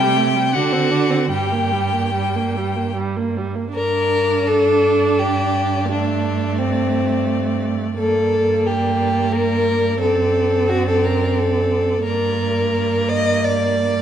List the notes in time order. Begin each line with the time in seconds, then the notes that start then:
Already playing: C3 G4 G5
0.00 G3
0.17 A3
0.35 G3
0.53 D3 D4 F#4 F#5
0.72 C4
0.91 D4
1.10 C4
1.31 G2 G3 G4 G5
1.52 A#3
1.72 G3
1.93 A#3
2.15 G3
2.35 A#3
2.57 G3
2.76 A#3
2.96 G3
3.16 A#3
3.37 G3
3.55 A#3
3.73 D4 A#4 D5
3.77 G2
4.47 A4
5.19 G4
5.91 A3 D4
6.59 C4
7.98 G2 A#3 A4 D5
8.66 G4
9.33 A#4
10.01 F#2 C4 A4
10.70 F#4
10.88 A4
11.05 A#4
11.38 A4
12.04 G2 A#3 A#4 D5
13.09 D#5
13.44 D5